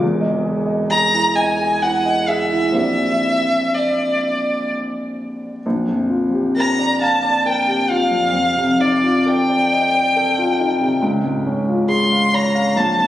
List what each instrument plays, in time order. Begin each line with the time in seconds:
0.00 grand piano E1 E2
0.20 grand piano D#5
0.44 grand piano G#4
0.66 grand piano D#5
0.90 grand piano G#4, violin A#5
1.14 grand piano E4
1.35 grand piano D#5, violin G#5
1.57 grand piano G#4
1.82 grand piano E4, violin F#5
2.05 grand piano D#5
2.28 grand piano G#4, violin E5
2.52 grand piano E4
2.72 grand piano A#1 C4 G4 A#4
2.76 grand piano D5, violin E5
3.74 violin D5
5.66 grand piano A#1
5.88 grand piano F2
6.10 grand piano F4
6.33 grand piano G4
6.57 grand piano A#4, violin A#5
6.79 grand piano D5
7.01 grand piano F5, violin A5
7.23 grand piano D5
7.46 grand piano A#4, violin G5
7.67 grand piano G4
7.90 grand piano F4, violin F5
8.11 grand piano F2
8.33 grand piano F2
8.56 grand piano C3
8.79 grand piano D#4, violin D5
9.03 grand piano F4
9.26 grand piano A4, violin G5
9.50 grand piano D5
9.73 grand piano D#5
9.95 grand piano D5
10.16 grand piano A4
10.38 grand piano F4
10.60 grand piano D#4
10.81 grand piano C3
11.02 grand piano C#2
11.24 grand piano G#2
11.46 grand piano C#4
11.68 grand piano F4
11.88 grand piano G#4, violin C6
12.12 grand piano F5
12.33 grand piano C#5, violin A#5
12.55 grand piano F5
12.76 grand piano A#1, violin A5
12.98 grand piano F2